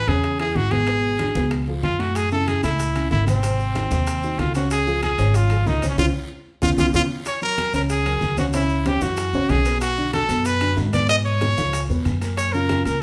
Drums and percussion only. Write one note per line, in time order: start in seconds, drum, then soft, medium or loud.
0.07 high bongo soft
0.07 high timbale medium
0.07 short guiro medium
0.23 high bongo medium
0.23 high conga soft
0.23 high timbale medium
0.23 long guiro medium
0.39 high bongo soft
0.39 high conga soft
0.39 high timbale medium
0.56 high bongo soft
0.56 low bongo medium
0.56 high conga medium
0.56 short guiro medium
0.71 high bongo soft
0.71 high conga medium
0.71 high timbale medium
0.71 short guiro medium
0.87 high bongo medium
0.87 high conga soft
0.87 high timbale medium
0.87 long guiro medium
1.04 high conga soft
1.19 high bongo medium
1.19 high conga medium
1.19 high timbale medium
1.19 short guiro medium
1.35 high bongo soft
1.35 high conga medium
1.35 short guiro medium
1.51 high bongo medium
1.51 high conga soft
1.51 high timbale medium
1.51 long guiro medium
1.67 high bongo soft
1.67 high conga soft
1.83 high bongo soft
1.83 low bongo medium
1.83 high conga medium
1.83 high timbale medium
1.83 short guiro medium
1.99 high bongo soft
1.99 high conga soft
1.99 high timbale medium
1.99 short guiro medium
2.15 high bongo medium
2.15 high conga soft
2.15 high timbale medium
2.15 maracas medium
2.31 high conga soft
2.31 maracas soft
2.47 high bongo medium
2.47 high conga medium
2.47 high timbale medium
2.47 short guiro medium
2.47 maracas soft
2.63 high bongo soft
2.63 high timbale medium
2.63 short guiro medium
2.63 maracas medium
2.79 high bongo medium
2.79 high conga soft
2.79 high timbale medium
2.79 maracas medium
2.95 high bongo soft
2.95 high conga soft
2.95 high timbale medium
2.95 maracas soft
3.11 high bongo soft
3.11 low bongo medium
3.11 high conga medium
3.11 low timbale medium
3.11 short guiro medium
3.11 maracas soft
3.27 high bongo soft
3.27 high conga medium
3.27 high timbale medium
3.27 short guiro medium
3.27 maracas medium
3.43 high bongo medium
3.43 high conga soft
3.43 high timbale medium
3.43 maracas medium
3.60 high conga soft
3.60 maracas soft
3.75 high bongo medium
3.75 high conga medium
3.75 high timbale medium
3.75 short guiro medium
3.75 maracas soft
3.91 high bongo soft
3.91 high conga medium
3.91 short guiro medium
3.91 maracas medium
4.07 high bongo medium
4.07 high conga soft
4.07 high timbale medium
4.07 long guiro medium
4.07 maracas medium
4.23 high bongo soft
4.23 high conga soft
4.23 maracas soft
4.39 high bongo soft
4.39 low bongo medium
4.39 high conga medium
4.39 high timbale medium
4.39 low timbale medium
4.39 short guiro medium
4.39 maracas soft
4.54 high bongo soft
4.54 high conga soft
4.54 high timbale medium
4.54 short guiro medium
4.54 maracas medium
4.70 high bongo medium
4.70 high conga soft
4.70 high timbale medium
4.70 maracas medium
4.87 high conga soft
4.87 maracas soft
5.03 high bongo medium
5.03 high conga medium
5.03 high timbale medium
5.03 short guiro medium
5.03 maracas soft
5.18 high bongo soft
5.18 high timbale medium
5.18 short guiro medium
5.18 maracas medium
5.34 high bongo medium
5.34 high timbale medium
5.34 maracas medium
5.50 high bongo soft
5.50 high conga soft
5.50 high timbale medium
5.50 maracas soft
5.66 high bongo soft
5.66 low bongo medium
5.66 high conga medium
5.66 low timbale medium
5.66 short guiro medium
5.66 maracas soft
5.82 high bongo soft
5.82 high conga medium
5.82 high timbale medium
5.82 short guiro medium
5.82 maracas medium
5.98 high bongo medium
5.98 high conga medium
5.98 high timbale medium
5.98 long guiro medium
5.98 maracas medium
6.62 high bongo medium
6.62 high conga medium
6.62 high timbale medium
6.62 long guiro medium
6.62 maracas medium
6.78 high bongo medium
6.78 high conga medium
6.78 high timbale medium
6.78 long guiro medium
6.78 maracas medium
6.94 high bongo medium
6.94 high conga medium
6.94 high timbale medium
6.94 long guiro medium
6.94 maracas medium
7.26 high bongo medium
7.26 high conga soft
7.26 high timbale medium
7.26 long guiro medium
7.26 maracas medium
7.42 high conga soft
7.42 maracas soft
7.58 high bongo medium
7.58 high conga medium
7.58 high timbale medium
7.58 short guiro medium
7.58 maracas soft
7.73 high bongo soft
7.73 high timbale medium
7.73 short guiro medium
7.73 maracas medium
7.89 high bongo medium
7.89 high conga soft
7.89 high timbale medium
7.89 maracas medium
8.05 high bongo soft
8.05 high conga soft
8.05 high timbale medium
8.05 maracas soft
8.21 high bongo soft
8.21 low bongo medium
8.21 high conga medium
8.21 short guiro medium
8.21 maracas soft
8.37 high bongo soft
8.37 high conga medium
8.37 high timbale medium
8.37 short guiro medium
8.37 maracas medium
8.53 high bongo medium
8.53 high conga soft
8.53 high timbale medium
8.53 maracas medium
8.69 high conga soft
8.69 maracas soft
8.85 high bongo medium
8.85 high conga medium
8.85 high timbale medium
8.85 short guiro medium
8.85 maracas soft
9.01 high bongo soft
9.01 high conga medium
9.01 short guiro medium
9.01 maracas medium
9.16 high bongo medium
9.16 high conga soft
9.16 high timbale medium
9.16 long guiro medium
9.16 maracas medium
9.33 high bongo soft
9.33 high conga soft
9.33 maracas soft
9.49 high bongo soft
9.49 low bongo medium
9.49 high conga medium
9.49 high timbale medium
9.49 low timbale medium
9.49 short guiro medium
9.49 maracas soft
9.65 high bongo soft
9.65 high timbale medium
9.65 short guiro medium
9.65 maracas medium
9.81 high bongo medium
9.81 high conga soft
9.81 high timbale medium
9.81 maracas medium
9.97 high conga soft
9.97 maracas soft
10.13 high bongo medium
10.13 high conga medium
10.13 high timbale medium
10.13 short guiro medium
10.13 maracas soft
10.29 high bongo soft
10.29 high timbale medium
10.29 short guiro medium
10.29 maracas medium
10.45 high bongo medium
10.45 high conga soft
10.45 high timbale medium
10.45 maracas medium
10.61 high bongo soft
10.61 high conga soft
10.61 high timbale medium
10.61 maracas soft
10.77 high bongo soft
10.77 low bongo medium
10.77 high conga medium
10.77 low timbale medium
10.77 short guiro medium
10.77 maracas soft
10.93 high bongo soft
10.93 high conga medium
10.93 high timbale medium
10.93 short guiro medium
10.93 maracas medium
11.09 high bongo medium
11.09 high timbale medium
11.09 maracas medium
11.25 high conga soft
11.25 maracas soft
11.41 high bongo medium
11.41 high conga medium
11.41 high timbale medium
11.41 short guiro medium
11.41 maracas soft
11.57 high bongo soft
11.57 high conga medium
11.57 short guiro medium
11.57 maracas medium
11.73 high bongo medium
11.73 high conga soft
11.73 high timbale medium
11.73 maracas medium
11.89 high bongo soft
11.89 high conga soft
11.89 maracas soft
12.05 high bongo soft
12.05 low bongo medium
12.05 high conga medium
12.05 high timbale medium
12.05 short guiro medium
12.05 maracas soft
12.21 high bongo soft
12.21 high conga soft
12.21 high timbale medium
12.21 short guiro medium
12.21 maracas medium
12.37 high bongo medium
12.37 high conga soft
12.37 high timbale medium
12.37 maracas medium
12.54 high conga soft
12.54 maracas soft
12.69 high bongo medium
12.69 high conga medium
12.69 high timbale medium
12.69 short guiro medium
12.69 maracas soft
12.85 high bongo soft
12.85 high timbale medium
12.85 short guiro medium
12.85 maracas medium